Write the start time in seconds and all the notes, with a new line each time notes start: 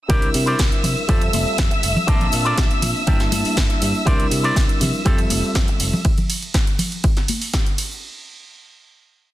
0.08 C2 G3 C4 D4 E4 A#4 C5 D5 E5 E6, kick, closed hi-hat, ride, tambourine
0.22 closed hi-hat, tambourine
0.34 C3, open hi-hat, ride, tambourine
0.46 E4 A#4 C5 D5, closed hi-hat, tambourine
0.59 C2, kick, snare, closed hi-hat, ride, tambourine
0.71 closed hi-hat, tambourine
0.83 C3, muted clean electric guitar stroke, open hi-hat, ride, tambourine, low conga
0.97 tambourine
1.08 F2 G3 C4 F4 G4 A4 E5, kick, closed hi-hat, ride, tambourine
1.22 closed hi-hat, tambourine
1.33 F1, muted clean electric guitar stroke, open hi-hat, ride, tambourine, high conga
1.47 muted fingered electric bass stroke, tambourine
1.58 F2, kick, snare, closed hi-hat, ride, tambourine
1.71 muted clean electric guitar stroke, closed hi-hat, tambourine
1.83 F1, muted clean electric guitar stroke, open hi-hat, ride, tambourine
1.96 tambourine, low conga
2.07 A#1 A#3 C4 D4 F4 A4 A#4 D5 A5, kick, closed hi-hat, ride, tambourine
2.21 closed hi-hat, tambourine, low conga
2.32 A#2, open hi-hat, ride, tambourine
2.45 F4 A4 A#4 D5, closed hi-hat, tambourine
2.58 A#1, kick, snare, closed hi-hat, ride, tambourine
2.71 closed hi-hat, tambourine
2.82 A#2, muted clean electric guitar stroke, open hi-hat, ride, tambourine, low conga
2.96 tambourine
3.07 G1 G3 A#3 D4 E4 G4 A4 A#4 E5 A5, kick, closed hi-hat, ride, tambourine
3.20 snare, closed hi-hat, tambourine
3.31 G2, muted clean electric guitar stroke, open hi-hat, ride, tambourine, high conga
3.45 muted fingered electric bass stroke, open hi-hat, tambourine
3.57 G1, kick, snare, closed hi-hat, ride, tambourine
3.69 muted clean electric guitar stroke, closed hi-hat, tambourine
3.81 G2, muted clean electric guitar stroke, open hi-hat, ride, tambourine
3.95 tambourine
4.06 C2 G3 C4 D4 E4 A#4 C5 D5, kick, closed hi-hat, ride, tambourine
4.20 closed hi-hat, tambourine
4.31 C3, open hi-hat, ride, tambourine
4.43 E4 A#4 C5 D5, closed hi-hat, tambourine
4.56 C2, kick, snare, closed hi-hat, ride, tambourine
4.69 closed hi-hat, tambourine
4.80 C3, muted clean electric guitar stroke, open hi-hat, ride, tambourine, low conga
4.94 tambourine
5.05 F2 G3 C4 F4 G4 A4 E5, kick, closed hi-hat, ride, tambourine
5.18 closed hi-hat, tambourine
5.30 F1, muted clean electric guitar stroke, open hi-hat, ride, tambourine, high conga
5.44 muted fingered electric bass stroke, tambourine
5.55 F2, kick, snare, closed hi-hat, ride, tambourine
5.68 muted clean electric guitar stroke, closed hi-hat, tambourine
5.80 F1, muted clean electric guitar stroke, open hi-hat, ride, tambourine
5.93 tambourine, low conga
6.05 kick, closed hi-hat, ride, tambourine
6.18 closed hi-hat, tambourine, low conga
6.30 open hi-hat, ride, tambourine
6.42 closed hi-hat, tambourine
6.54 kick, snare, closed hi-hat, ride, tambourine
6.67 closed hi-hat, tambourine
6.79 open hi-hat, ride, tambourine, low conga
6.92 closed hi-hat, tambourine
7.03 kick, closed hi-hat, ride, tambourine
7.17 snare, closed hi-hat, tambourine
7.28 open hi-hat, ride, tambourine, high conga
7.41 open hi-hat, tambourine
7.54 kick, snare, ride, tambourine
7.66 closed hi-hat, tambourine
7.78 open hi-hat, ride, tambourine
7.91 tambourine